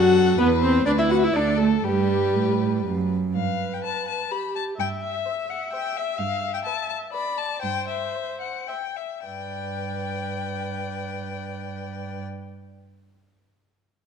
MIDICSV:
0, 0, Header, 1, 5, 480
1, 0, Start_track
1, 0, Key_signature, 1, "major"
1, 0, Tempo, 476190
1, 400, Time_signature, 3, 2, 24, 8
1, 1366, Tempo, 496689
1, 3766, Tempo, 469116
1, 6646, Tempo, 485830
1, 7606, Tempo, 529101
1, 8566, Tempo, 566038
1, 13126, End_track
2, 0, Start_track
2, 0, Title_t, "Violin"
2, 0, Program_c, 0, 40
2, 0, Note_on_c, 0, 69, 73
2, 389, Note_on_c, 0, 71, 82
2, 404, Note_off_c, 0, 69, 0
2, 860, Note_off_c, 0, 71, 0
2, 866, Note_on_c, 0, 71, 74
2, 1364, Note_on_c, 0, 69, 66
2, 1379, Note_off_c, 0, 71, 0
2, 1841, Note_on_c, 0, 71, 74
2, 1856, Note_off_c, 0, 69, 0
2, 3093, Note_off_c, 0, 71, 0
2, 3298, Note_on_c, 0, 77, 61
2, 3668, Note_on_c, 0, 79, 51
2, 3683, Note_off_c, 0, 77, 0
2, 3761, Note_off_c, 0, 79, 0
2, 3767, Note_on_c, 0, 81, 70
2, 4006, Note_off_c, 0, 81, 0
2, 4011, Note_on_c, 0, 81, 58
2, 4256, Note_on_c, 0, 83, 52
2, 4271, Note_off_c, 0, 81, 0
2, 4495, Note_off_c, 0, 83, 0
2, 4501, Note_on_c, 0, 81, 61
2, 4583, Note_off_c, 0, 81, 0
2, 4746, Note_on_c, 0, 79, 73
2, 4828, Note_off_c, 0, 79, 0
2, 4984, Note_on_c, 0, 76, 60
2, 5464, Note_on_c, 0, 78, 58
2, 5479, Note_off_c, 0, 76, 0
2, 5692, Note_off_c, 0, 78, 0
2, 5699, Note_on_c, 0, 79, 65
2, 5942, Note_on_c, 0, 76, 66
2, 5957, Note_off_c, 0, 79, 0
2, 6167, Note_on_c, 0, 77, 73
2, 6182, Note_off_c, 0, 76, 0
2, 6523, Note_off_c, 0, 77, 0
2, 6528, Note_on_c, 0, 79, 68
2, 6576, Note_off_c, 0, 79, 0
2, 6640, Note_on_c, 0, 81, 69
2, 6873, Note_off_c, 0, 81, 0
2, 6884, Note_on_c, 0, 81, 60
2, 6963, Note_off_c, 0, 81, 0
2, 7118, Note_on_c, 0, 83, 63
2, 7360, Note_on_c, 0, 81, 72
2, 7375, Note_off_c, 0, 83, 0
2, 7593, Note_off_c, 0, 81, 0
2, 7599, Note_on_c, 0, 79, 71
2, 7828, Note_off_c, 0, 79, 0
2, 7838, Note_on_c, 0, 76, 59
2, 8307, Note_off_c, 0, 76, 0
2, 8314, Note_on_c, 0, 78, 48
2, 8561, Note_on_c, 0, 79, 54
2, 8575, Note_off_c, 0, 78, 0
2, 8805, Note_on_c, 0, 76, 45
2, 8818, Note_off_c, 0, 79, 0
2, 9045, Note_off_c, 0, 76, 0
2, 9050, Note_on_c, 0, 79, 52
2, 11573, Note_off_c, 0, 79, 0
2, 13126, End_track
3, 0, Start_track
3, 0, Title_t, "Violin"
3, 0, Program_c, 1, 40
3, 0, Note_on_c, 1, 78, 102
3, 383, Note_on_c, 1, 71, 89
3, 398, Note_off_c, 1, 78, 0
3, 611, Note_off_c, 1, 71, 0
3, 617, Note_on_c, 1, 72, 92
3, 858, Note_off_c, 1, 72, 0
3, 864, Note_on_c, 1, 74, 97
3, 915, Note_off_c, 1, 74, 0
3, 991, Note_on_c, 1, 76, 83
3, 1041, Note_off_c, 1, 76, 0
3, 1111, Note_on_c, 1, 78, 80
3, 1218, Note_off_c, 1, 78, 0
3, 1224, Note_on_c, 1, 76, 79
3, 1348, Note_on_c, 1, 74, 87
3, 1363, Note_off_c, 1, 76, 0
3, 1581, Note_on_c, 1, 69, 76
3, 1595, Note_off_c, 1, 74, 0
3, 1830, Note_on_c, 1, 67, 77
3, 1844, Note_off_c, 1, 69, 0
3, 2805, Note_off_c, 1, 67, 0
3, 3768, Note_on_c, 1, 71, 48
3, 4130, Note_off_c, 1, 71, 0
3, 4259, Note_on_c, 1, 71, 46
3, 4615, Note_off_c, 1, 71, 0
3, 5219, Note_on_c, 1, 72, 49
3, 5574, Note_off_c, 1, 72, 0
3, 5706, Note_on_c, 1, 72, 46
3, 6052, Note_off_c, 1, 72, 0
3, 6659, Note_on_c, 1, 71, 53
3, 7003, Note_off_c, 1, 71, 0
3, 7129, Note_on_c, 1, 71, 48
3, 7485, Note_off_c, 1, 71, 0
3, 8082, Note_on_c, 1, 72, 46
3, 8442, Note_off_c, 1, 72, 0
3, 8574, Note_on_c, 1, 72, 40
3, 8933, Note_off_c, 1, 72, 0
3, 9057, Note_on_c, 1, 74, 36
3, 11580, Note_off_c, 1, 74, 0
3, 13126, End_track
4, 0, Start_track
4, 0, Title_t, "Viola"
4, 0, Program_c, 2, 41
4, 0, Note_on_c, 2, 66, 100
4, 390, Note_off_c, 2, 66, 0
4, 397, Note_on_c, 2, 59, 113
4, 478, Note_off_c, 2, 59, 0
4, 631, Note_on_c, 2, 60, 89
4, 863, Note_off_c, 2, 60, 0
4, 869, Note_on_c, 2, 62, 103
4, 920, Note_off_c, 2, 62, 0
4, 999, Note_on_c, 2, 64, 86
4, 1118, Note_on_c, 2, 66, 87
4, 1133, Note_off_c, 2, 64, 0
4, 1246, Note_on_c, 2, 64, 93
4, 1262, Note_off_c, 2, 66, 0
4, 1368, Note_on_c, 2, 62, 81
4, 1383, Note_off_c, 2, 64, 0
4, 1604, Note_off_c, 2, 62, 0
4, 1609, Note_on_c, 2, 57, 80
4, 1686, Note_off_c, 2, 57, 0
4, 1837, Note_on_c, 2, 55, 84
4, 2789, Note_off_c, 2, 55, 0
4, 3298, Note_on_c, 2, 71, 53
4, 4251, Note_on_c, 2, 67, 42
4, 4266, Note_off_c, 2, 71, 0
4, 4725, Note_off_c, 2, 67, 0
4, 4731, Note_on_c, 2, 76, 65
4, 7076, Note_off_c, 2, 76, 0
4, 7114, Note_on_c, 2, 74, 51
4, 7594, Note_off_c, 2, 74, 0
4, 7605, Note_on_c, 2, 72, 58
4, 8546, Note_off_c, 2, 72, 0
4, 8565, Note_on_c, 2, 76, 36
4, 8633, Note_off_c, 2, 76, 0
4, 9050, Note_on_c, 2, 71, 40
4, 11573, Note_off_c, 2, 71, 0
4, 13126, End_track
5, 0, Start_track
5, 0, Title_t, "Cello"
5, 0, Program_c, 3, 42
5, 0, Note_on_c, 3, 42, 81
5, 387, Note_off_c, 3, 42, 0
5, 392, Note_on_c, 3, 40, 88
5, 865, Note_off_c, 3, 40, 0
5, 871, Note_on_c, 3, 38, 69
5, 1352, Note_off_c, 3, 38, 0
5, 1358, Note_on_c, 3, 38, 73
5, 1831, Note_off_c, 3, 38, 0
5, 1838, Note_on_c, 3, 43, 71
5, 2322, Note_on_c, 3, 45, 64
5, 2336, Note_off_c, 3, 43, 0
5, 2808, Note_off_c, 3, 45, 0
5, 2812, Note_on_c, 3, 42, 64
5, 3286, Note_off_c, 3, 42, 0
5, 3298, Note_on_c, 3, 43, 54
5, 3668, Note_off_c, 3, 43, 0
5, 4733, Note_on_c, 3, 43, 54
5, 5116, Note_off_c, 3, 43, 0
5, 6164, Note_on_c, 3, 43, 52
5, 6542, Note_off_c, 3, 43, 0
5, 7607, Note_on_c, 3, 43, 53
5, 7974, Note_off_c, 3, 43, 0
5, 9053, Note_on_c, 3, 43, 35
5, 11575, Note_off_c, 3, 43, 0
5, 13126, End_track
0, 0, End_of_file